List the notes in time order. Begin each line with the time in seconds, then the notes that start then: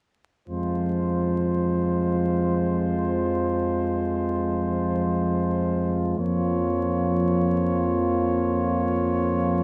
0.48 F2 F3 G#3 F4 C5
6.18 F2 F3 A#3 F4 C#5